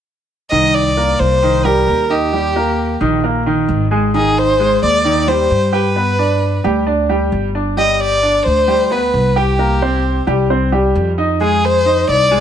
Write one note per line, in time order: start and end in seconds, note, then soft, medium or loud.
0.51 1.15 C2 medium
0.51 0.89 D#3 medium
0.51 0.89 D#4 medium
0.51 0.76 D#5 loud
0.74 1.21 D5 medium
0.97 1.34 A#3 medium
0.97 1.34 A#4 medium
1.19 1.84 C2 medium
1.19 1.67 C5 loud
1.42 1.61 D#3 medium
1.42 1.61 D#4 medium
1.65 2.02 G3 medium
1.65 2.02 G4 medium
1.65 2.12 A#4 medium
1.87 2.95 D#2 medium
2.10 2.28 D#4 medium
2.10 3.01 G4 medium
2.10 2.29 D#5 medium
2.33 2.51 G3 medium
2.33 2.52 G4 medium
2.56 2.93 A#3 medium
2.56 2.93 A#4 medium
3.01 3.65 A#1 medium
3.01 3.19 D#3 medium
3.01 3.19 D#4 medium
3.24 3.42 A#3 medium
3.24 3.42 A#4 medium
3.46 3.83 D#3 medium
3.46 3.84 D#4 medium
3.69 4.76 G#1 medium
3.91 4.10 G#3 medium
3.91 4.10 G#4 medium
4.14 4.51 D#3 medium
4.14 4.51 D#4 medium
4.14 4.40 G#4 medium
4.38 4.82 C5 medium
4.59 4.97 G#3 medium
4.59 4.97 G#4 medium
4.82 5.46 D#2 medium
4.82 5.30 D5 loud
5.04 5.23 D#3 medium
5.04 5.23 D#4 medium
5.27 5.65 G3 medium
5.27 5.65 G4 medium
5.27 5.75 C5 loud
5.51 6.58 G2 medium
5.73 5.91 G4 medium
5.73 6.64 B4 medium
5.73 5.92 G5 medium
5.96 6.14 B3 medium
5.96 6.15 B4 medium
6.19 6.56 D4 medium
6.19 6.56 D5 medium
6.64 7.28 D2 medium
6.64 6.83 G3 medium
6.64 6.83 G4 medium
6.87 7.05 D4 medium
6.87 7.05 D5 medium
7.09 7.46 G3 medium
7.09 7.47 G4 medium
7.32 8.39 G1 medium
7.55 7.73 D4 medium
7.55 7.74 D5 medium
7.77 8.14 G3 medium
7.77 8.15 G4 medium
7.77 7.94 D#5 medium
7.94 8.02 D#5 medium
8.01 8.45 D5 loud
8.23 8.60 D4 medium
8.23 8.60 D5 medium
8.46 9.10 D2 medium
8.46 8.93 C5 loud
8.68 8.86 G3 medium
8.68 8.87 G4 medium
8.91 9.28 B3 medium
8.91 9.28 B4 medium
8.91 9.39 B4 medium
9.14 10.21 C2 medium
9.36 9.55 G4 medium
9.36 10.28 G4 medium
9.36 9.55 G5 medium
9.59 9.77 A#3 medium
9.59 9.78 A#4 medium
9.82 10.19 C4 medium
9.82 10.19 C5 medium
10.27 10.91 C2 medium
10.27 10.46 G3 medium
10.27 10.46 G4 medium
10.50 10.69 C4 medium
10.50 10.69 C5 medium
10.72 11.10 G3 medium
10.72 11.10 G4 medium
10.95 12.03 F2 medium
11.18 11.37 D#4 medium
11.18 11.37 D#5 medium
11.41 11.78 G#3 medium
11.41 11.78 G#4 medium
11.41 11.67 G#4 medium
11.66 12.10 C5 loud
11.85 12.23 D#4 medium
11.85 12.23 D#5 medium
12.08 12.40 C2 medium
12.08 12.40 D5 loud
12.31 12.40 G#3 medium
12.31 12.40 G#4 medium